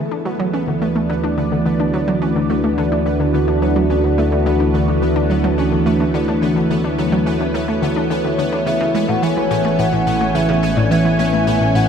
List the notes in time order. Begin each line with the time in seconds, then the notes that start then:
Already playing: D2 E3 A3 B3 G#4 B4
0.11 D4
0.25 F#3
0.33 D4 F#4
0.39 F#3 D5
0.53 C#4
0.67 D3
0.82 A3
0.96 A3
1.10 D3
1.24 D4
1.38 D3
1.52 D3
1.66 D3
1.80 D4
1.94 F#3
2.08 F#3
2.22 C#4
2.36 D3
2.50 A3
2.64 A3
2.78 D3
2.92 D4
3.06 D3
3.20 D3
3.34 D3
3.48 D4
3.62 F#3
3.76 F#3
3.90 C#4
4.04 D3
4.18 A3
4.32 A3
4.46 D3
4.60 D4
4.74 D3
4.88 D3 C#5
5.02 D3
5.16 D4
5.30 F#3
5.44 F#3
5.58 C#4
5.72 D3
5.86 A3
6.00 A3
6.14 D3
6.28 D4
6.42 D3
6.56 D3
6.70 D3
6.84 D4
6.98 F#3
7.12 F#3
7.26 C#4
7.40 D3
7.54 A3
7.68 A3
7.82 D3
7.96 D4
8.10 D3
8.24 D3
8.38 D3
8.52 D4
8.66 A1 C#3 E5
8.81 C#3
8.89 G#5
8.95 G#3
9.02 C#4
9.09 A2 F#5
9.23 E3 G#5
9.37 E3
9.51 A2
9.65 A3
9.79 A2 F#5
9.93 A2
10.07 A2
10.21 A3
10.35 C#3 E5
10.49 C#3
10.63 G#3
10.77 A2 D5
10.91 E3 E5
11.05 E3
11.19 A2
11.33 A3
11.47 A2
11.61 A2
11.75 A2 F#5